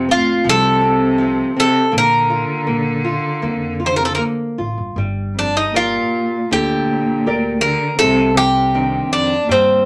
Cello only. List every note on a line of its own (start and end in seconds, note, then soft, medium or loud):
0.12 0.44 A2 medium
0.46 1.52 C3 medium
1.57 1.90 C3 medium
1.95 3.80 D3 medium
3.84 3.91 D#3 medium
3.92 4.00 D3 medium
4.00 4.09 C3 medium
4.10 4.19 D3 medium
5.34 5.53 F2 medium
5.53 5.72 G2 medium
5.73 6.47 A#2 medium
6.48 7.58 A#2 medium
7.61 7.97 D3 medium
7.97 8.33 C3 medium
8.34 9.06 C3 medium
9.08 9.45 F2 medium
9.45 9.85 D#2 medium